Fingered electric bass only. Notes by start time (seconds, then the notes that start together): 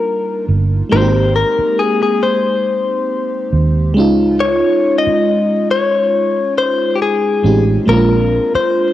0.48 G1
0.92 G#1
1.59 muted fingered electric bass stroke
3.53 D#2
3.96 C#2
5.07 muted fingered electric bass stroke
7.44 A1
7.88 A#1
8.55 muted fingered electric bass stroke